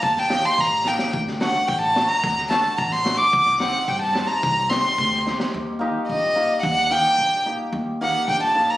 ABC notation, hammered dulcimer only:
X:1
M:2/4
L:1/16
Q:1/4=109
K:none
V:1 name="Hammered dulcimer"
z2 [_B,_EG] z3 [B,EG] z | z2 [A,D^F] z3 [A,DF] z | z2 [A,D^F] z3 [A,DF] z | z2 [C_EG] z3 [CEG] z |
z2 [C_EG] z3 [CEG] z | z2 [_B,_EG] z3 [B,EG] z | z2 [_B,_EG] z3 [B,EG] z | z2 [_B,_EG] z3 [B,EG] z |]